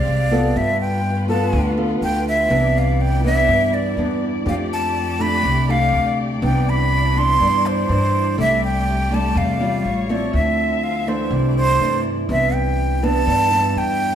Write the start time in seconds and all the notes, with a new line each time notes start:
Already playing: C3 G#3 C4 G4 D5 F5
0.07 C2
0.31 B3 F4 A4
0.55 G2 G3 A3 F4 B4 E5
0.81 G5
1.28 B3 F4 A4 A5
1.53 D2 D3
1.77 B3 F4 A4
2.01 D2 G5
2.28 E5
2.49 C2 C3 E3 B3 D4 E4 D5
2.78 F5
3.01 G5
3.23 E3 B3 D4 E5
3.48 G2
3.74 D5
3.97 E2 E3 B3 D4
4.45 F2 F3 A3 D4 G4 F5
4.73 A5
5.19 A3 D4 G4 B5
5.43 C2 C3
5.68 A3 D4 G4 F5
5.93 D2
6.41 C2 C3 E3 B3 D4 E4 G5
6.69 B5
7.15 E3 B3 D4 C6
7.40 G2
7.66 C5
7.89 G2 E3 D4
8.37 C2 C3 G3 A3 D4 G4 E5
8.64 G5
9.11 G3 A3 D4 A5
9.35 E2 C3 F5
9.60 G3 C#4 F4
9.84 A1 G3 C#5
10.09 F3 C4 E4 D5
10.33 D2 D3 C4 E5
10.83 F5
11.07 E3 A3 D4 C5
11.29 C2 C3 A3 E4 D5
11.57 C5
11.79 G2 E3 A3 D4
12.29 C2 C3 E3 B3 D4 E5
12.54 G5
13.03 E3 B3 D4 A5
13.27 G2
13.51 E3 B3 D4
13.76 E2 G5